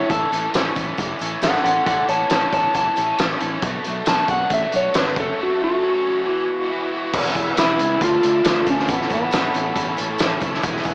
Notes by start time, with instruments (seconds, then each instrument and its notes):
Already playing: overdriven electric guitar A3 C#4, clean electric guitar C#5
0.10 fretless electric bass A1, overdriven electric guitar A2 E3 A3 C#4 A4, clean electric guitar A4, kick, closed hi-hat, tambourine
0.31 fretless electric bass A1, overdriven electric guitar E3 A3 C#4 A4, closed hi-hat, tambourine
0.53 fretless electric bass A1, overdriven electric guitar A2 E3 A3 C#4 A4, snare, closed hi-hat, tambourine
0.75 fretless electric bass A1, overdriven electric guitar B3, kick, closed hi-hat, tambourine
0.98 fretless electric bass F#1, overdriven electric guitar E3, kick, closed hi-hat, tambourine
1.19 fretless electric bass A1, overdriven electric guitar C#4 A4, closed hi-hat, tambourine
1.23 overdriven electric guitar A3 C#4
1.42 fretless electric bass A1, overdriven electric guitar E3 A3 B3, clean electric guitar A4 F#5, snare, closed hi-hat, tambourine
1.46 overdriven electric guitar C#4 A4
1.56 snare
1.64 fretless electric bass A1, overdriven electric guitar C#4 A4, clean electric guitar A4 F#5, closed hi-hat
1.69 overdriven electric guitar A3
1.86 fretless electric bass A1, overdriven electric guitar A2 E3 A3 C#4, clean electric guitar A4 F#5, kick, closed hi-hat, tambourine
1.91 overdriven electric guitar A4
2.09 fretless electric bass A1, overdriven electric guitar E3 C#4 A4, clean electric guitar C#5 A5, closed hi-hat, tambourine
2.13 overdriven electric guitar A3
2.30 fretless electric bass A1, overdriven electric guitar E3 A3 C#4, clean electric guitar C#5 A5, snare, closed hi-hat, tambourine
2.34 overdriven electric guitar A4
2.52 fretless electric bass A1, overdriven electric guitar B3, clean electric guitar C#5 A5, kick, closed hi-hat, tambourine
2.74 fretless electric bass F#1, overdriven electric guitar E3, clean electric guitar A5, kick, closed hi-hat, tambourine
2.96 fretless electric bass A1, overdriven electric guitar C#4 A4, closed hi-hat, tambourine
3.00 overdriven electric guitar A3
3.19 fretless electric bass A1, overdriven electric guitar E3 A3 B3 C#4 A4, snare, closed hi-hat, tambourine
3.30 snare
3.40 fretless electric bass A1, overdriven electric guitar A3 C#4 A4, closed hi-hat
3.62 fretless electric bass B1, overdriven electric guitar B2 F#3 A3 B3 D4, kick, closed hi-hat
3.66 overdriven electric guitar F#4
3.84 fretless electric bass B1, overdriven electric guitar A3 B3 D4 F#4, closed hi-hat, tambourine
4.05 fretless electric bass B1, overdriven electric guitar B2 F#3 B3, snare, closed hi-hat, tambourine
4.08 overdriven electric guitar D4 F#4, clean electric guitar A5, tambourine
4.28 fretless electric bass B1, overdriven electric guitar D4, clean electric guitar F#5, kick, closed hi-hat, tambourine
4.50 fretless electric bass A1, overdriven electric guitar A3, clean electric guitar E5, kick, closed hi-hat, tambourine
4.72 fretless electric bass B1, overdriven electric guitar B3 D4 F#4, closed hi-hat, tambourine
4.76 clean electric guitar C#5
4.94 fretless electric bass G#1, overdriven electric guitar F#3 B3 D4 F#4, clean electric guitar B4, snare, closed hi-hat, tambourine
5.06 snare
5.16 fretless electric bass F#1, overdriven electric guitar F#2 C#3 F#3 A3 C#4 F#4, clean electric guitar A4, kick, closed hi-hat
5.37 overdriven electric guitar F#2 C#3 F#3 A3 C#4 F#4
5.43 clean electric guitar F#4
5.59 overdriven electric guitar F#3 A3 C#4 F#4
5.63 clean electric guitar F#4
5.81 overdriven electric guitar F#2 C#3 F#3 A3 C#4 F#4
6.04 overdriven electric guitar C#4
6.25 overdriven electric guitar E2 B2 E3 B3 E4 F#4
6.47 overdriven electric guitar E3 B3 E4 F#4
6.69 overdriven electric guitar E3 B3 E4 F#4
6.91 overdriven electric guitar E3 B3 E4 F#4
7.13 fretless electric bass E1, overdriven electric guitar E2 B2 E3 G#3 B3 E4 G#4, analog synth pad B4 G#5 E6, kick, crash, tambourine
7.26 snare
7.35 fretless electric bass E1, kick, closed hi-hat, tambourine
7.57 fretless electric bass E1, overdriven electric guitar E2 B2 E3 G#3 B3 E4 G#4, clean electric guitar E4, snare, closed hi-hat, tambourine
7.78 fretless electric bass C#2, overdriven electric guitar E2 B2 E3 G#3 B3 E4 G#4, closed hi-hat
8.00 fretless electric bass D2, overdriven electric guitar D3 F3 A3 D4 F4 A4, clean electric guitar F4, analog synth pad A4 F5 D6, kick, closed hi-hat
8.23 fretless electric bass D2, closed hi-hat, tambourine
8.44 fretless electric bass D2, overdriven electric guitar D3 F3 A3 D4 F4 A4, snare, closed hi-hat, tambourine
8.66 fretless electric bass D2, overdriven electric guitar D3 F3 A3 D4 F4 A4, clean electric guitar C#4, kick, closed hi-hat, tambourine
8.80 snare
8.88 fretless electric bass A1, overdriven electric guitar A2 E3 A3 C#4 E4 A4, clean electric guitar B3, analog synth pad C#5 B5, kick, closed hi-hat, tambourine
9.01 snare
9.10 fretless electric bass A1, clean electric guitar B3, kick, closed hi-hat, tambourine
9.31 fretless electric bass A1, overdriven electric guitar A2 E3 A3 C#4 E4 A4, snare, closed hi-hat, tambourine
9.54 fretless electric bass A1, overdriven electric guitar A2 E3 A3 C#4 E4 A4, closed hi-hat
9.76 fretless electric bass A1, overdriven electric guitar A2 E3 A3 C#4 E4 A4, kick, closed hi-hat
9.97 fretless electric bass A1, closed hi-hat, tambourine
10.18 fretless electric bass A1, overdriven electric guitar A2 E3 A4, snare, closed hi-hat, tambourine
10.22 overdriven electric guitar A3 C#4 E4
10.40 fretless electric bass F#1, overdriven electric guitar A2 E3 A3 A4, kick, closed hi-hat, tambourine
10.44 overdriven electric guitar A3 C#4 E4
10.54 snare
10.62 fretless electric bass E1, overdriven electric guitar E2 B2 E3 E4 G#4, analog synth pad G#4 E5, kick, closed hi-hat, tambourine
10.66 overdriven electric guitar G#3 B3 E4
10.76 snare
10.83 fretless electric bass E1, kick, closed hi-hat, tambourine